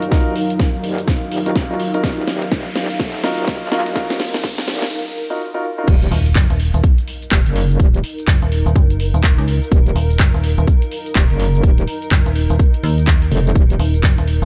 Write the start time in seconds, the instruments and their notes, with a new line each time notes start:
Already playing: analog synth pad F#3 D#4 F5, ambient pad D#4 A#4 F5, riser
0.02 wobble bass D#1, closed hi-hat, shaker
0.12 grand piano D#4 F4 F#4 A#4, kick, snare, closed hi-hat, shaker
0.27 shaker
0.36 open hi-hat
0.50 closed hi-hat, shaker
0.60 kick, snare, closed hi-hat, shaker
0.75 shaker
0.84 wobble bass D#1, open hi-hat
0.98 closed hi-hat, shaker
1.08 kick, snare, closed hi-hat, shaker
1.23 shaker
1.32 wobble bass D#1, open hi-hat
1.46 grand piano D#4 F4 F#4 A#4, closed hi-hat, shaker
1.56 kick, snare, closed hi-hat, shaker
1.70 grand piano D#4 F4 F#4 A#4, shaker
1.80 open hi-hat
1.94 grand piano D#4 F4 F#4 A#4, closed hi-hat, shaker
2.04 wobble bass D#1, kick, snare, closed hi-hat, shaker
2.19 shaker
2.28 wobble bass D#1, snare, open hi-hat
2.42 closed hi-hat, shaker
2.52 wobble bass D#1, kick, snare, closed hi-hat, shaker
2.67 shaker
2.76 snare, open hi-hat
2.90 wobble bass F1, closed hi-hat, shaker
3.00 kick, snare, closed hi-hat, shaker
3.15 shaker
3.24 grand piano D#4 F4 F#4 A#4, snare, open hi-hat
3.38 wobble bass D#1, closed hi-hat, shaker
3.48 kick, snare, closed hi-hat, shaker
3.62 wobble bass C#2, shaker
3.72 grand piano D#4 F4 F#4 A#4, snare, open hi-hat
3.86 wobble bass D#1, closed hi-hat, shaker
3.96 grand piano D#4 F4 F#4 A#4, kick, snare, closed hi-hat, shaker
4.10 snare, shaker
4.20 snare, open hi-hat
4.34 snare, closed hi-hat, shaker
4.44 kick, snare, closed hi-hat, shaker
4.58 snare, shaker
4.68 wobble bass D#1, snare, open hi-hat
4.82 snare, closed hi-hat, shaker
5.30 grand piano D#4 F4 F#4 A#4
5.54 grand piano D#4 F4 F#4 A#4
5.78 grand piano D#4 F4 F#4 A#4
5.87 wobble bass D#1, analog synth pad F#3 D#4 F5, ambient pad D#4, kick, closed hi-hat, crash, impact, shaker
6.02 closed hi-hat, shaker
6.12 fm bass D#1, open hi-hat
6.26 closed hi-hat, shaker
6.33 fm bass F#1, ambient pad A#4, kick, clap, closed hi-hat, shaker
6.50 fm bass D#1, closed hi-hat, shaker
6.60 open hi-hat
6.74 fm bass D#1, closed hi-hat, shaker
6.84 kick, closed hi-hat, shaker
6.98 closed hi-hat, shaker
7.08 open hi-hat
7.22 closed hi-hat, shaker
7.32 wobble bass D#1, kick, clap, closed hi-hat, shaker
7.46 wobble bass F#1, closed hi-hat, shaker
7.56 open hi-hat
7.71 shaker
7.80 wobble bass D#1, kick, closed hi-hat, shaker
7.94 closed hi-hat, shaker
8.04 open hi-hat
8.18 closed hi-hat, shaker
8.28 fm bass F#1, kick, clap, closed hi-hat, shaker
8.42 fm bass D#1, closed hi-hat, shaker
8.52 open hi-hat
8.66 fm bass D#1, closed hi-hat, shaker
8.76 fm bass F#1, kick, closed hi-hat, shaker
8.90 closed hi-hat, shaker
9.00 open hi-hat
9.14 fm bass D#1, closed hi-hat, shaker
9.24 kick, clap, closed hi-hat, shaker
9.38 fm bass C#2, closed hi-hat, shaker
9.48 open hi-hat
9.63 shaker
9.71 wobble bass D#1, kick, closed hi-hat, shaker
9.86 closed hi-hat, shaker
9.96 fm bass D#1, open hi-hat
10.10 closed hi-hat, shaker
10.20 fm bass F#1, kick, clap, closed hi-hat, shaker
10.34 fm bass D#1, closed hi-hat, shaker
10.44 open hi-hat
10.58 fm bass D#1, closed hi-hat, shaker
10.68 kick, closed hi-hat, shaker
10.82 closed hi-hat, shaker
10.92 open hi-hat
11.06 closed hi-hat, shaker
11.15 wobble bass D#1, kick, clap, closed hi-hat, shaker
11.30 wobble bass F#1, closed hi-hat, shaker
11.40 open hi-hat
11.55 shaker
11.63 wobble bass D#1, kick, closed hi-hat, shaker
11.78 closed hi-hat, shaker
11.88 open hi-hat
12.02 closed hi-hat, shaker
12.11 fm bass F#1, kick, clap, closed hi-hat, shaker
12.26 fm bass D#1, closed hi-hat, shaker
12.36 open hi-hat
12.50 fm bass D#1, closed hi-hat, shaker
12.59 kick, closed hi-hat, shaker
12.74 closed hi-hat, shaker
12.83 fm bass D#2, open hi-hat
12.98 closed hi-hat, shaker
13.07 kick, clap, closed hi-hat, shaker
13.22 closed hi-hat, shaker
13.31 wobble bass F1, open hi-hat
13.47 shaker
13.55 wobble bass D#1, analog synth pad C#5, kick, closed hi-hat, shaker
13.70 closed hi-hat, shaker
13.79 fm bass D#1, open hi-hat
13.94 closed hi-hat, shaker
14.03 fm bass F#1, kick, clap, closed hi-hat, shaker
14.18 fm bass D#1, closed hi-hat, shaker
14.27 open hi-hat